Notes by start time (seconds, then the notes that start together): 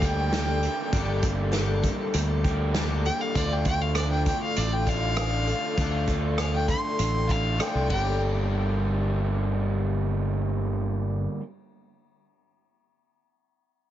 Already playing: D2 G3 A#3 G4 A4
0.01 G2 D3 G3 A#3 D4 G4 G5, kick, closed hi-hat
0.32 G2 D3 G3 A#3 D4 G4 A4, snare, closed hi-hat
0.62 A#3 G4 A4, closed hi-hat
0.93 G1 G2 D3 G3 A#3 D4 G4 A4, kick, closed hi-hat
1.22 G3 A#3 G4 A4, kick, closed hi-hat
1.52 G2 D3 G3 A#3 G4 A4, snare, closed hi-hat
1.82 G3 A#3 G4 A4, kick, closed hi-hat
2.14 D2 G3 A#3 G4 A4, closed hi-hat
2.44 G2 D3 G3 A#3 D4 G4, kick, closed hi-hat
2.74 G2 D3 G3 A#3 D4 G4 A4, snare, closed hi-hat
3.05 G3 A#3 G4 A4 G5, closed hi-hat
3.21 F5
3.35 D2 D3 F3 A3 D4 F4 A4 D5, kick, closed hi-hat
3.53 G5
3.65 D4 F4 A4 G5, kick, closed hi-hat
3.82 F5
3.95 D3 F3 D4 F4 A4 D5, cross-stick, closed hi-hat
4.11 G5
4.25 D4 F4 A4 G5, kick, closed hi-hat
4.43 F5
4.56 A1 F3 D4 F4 A4 D5, closed hi-hat
4.72 G5
4.86 D3 A3 D4 F4 F5, kick, closed hi-hat
5.16 D3 F3 A3 D4 F4 A4, cross-stick, closed hi-hat
5.47 D4 F4 A4, closed hi-hat
5.77 D2 D3 F3 A3 D4 F4 A4, kick, closed hi-hat
6.07 D4 F4 A4, kick, closed hi-hat
6.38 D3 F3 D4 F4 A4 F5, cross-stick, closed hi-hat
6.56 G5
6.68 D4 F4 A4 C6, kick, closed hi-hat
6.98 A1 F3 D4 F4 A4, closed hi-hat
7.28 D3 A3 D4 F4 F5, kick, closed hi-hat
7.58 D3 F3 A3 D4 F4 A4, cross-stick, closed hi-hat
7.62 G5
7.75 C2
7.86 G1 G2 D3, kick
7.90 G3 A#3 D4 G5, ride
7.94 G4 A4